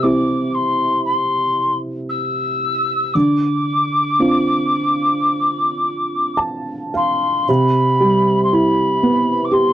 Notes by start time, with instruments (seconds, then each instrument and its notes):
Already playing: felt piano C3
0.02 felt piano C4 E4 G4, tin whistle D6
0.54 tin whistle C6
1.05 tin whistle C6
2.09 tin whistle E6
3.14 felt piano D3, tin whistle D6
4.20 felt piano C4 D4 F4
6.37 felt piano A5
6.94 felt piano F5, tin whistle C6
7.48 felt piano C3, tin whistle B5
8.00 felt piano G3
8.43 tin whistle C6
8.53 felt piano E4, tin whistle B5
9.03 felt piano B3
9.44 tin whistle D6
9.51 felt piano G4, tin whistle C6